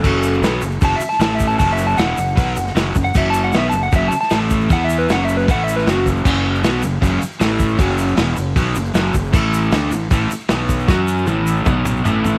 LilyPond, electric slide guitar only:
\new Staff \with { instrumentName = "Electric slide guitar" } { \time 4/4 \key fis \minor \tempo 4 = 155 a'4. r8 \tuplet 3/2 { a''8 e''8 a''8 a''8 e''8 a''8 } | \tuplet 3/2 { a''8 e''8 a''8 } fis''2 \tuplet 3/2 { r4 fis''8 } | \tuplet 3/2 { e''8 a''8 fis''8 e''8 a''8 fis''8 e''8 a''8 a''8 } r4 | \tuplet 3/2 { fis''8 e''8 b'8 fis''8 e''8 b'8 fis''8 e''8 b'8 } fis'8 r8 |
r1 | r1 | r1 | r1 | }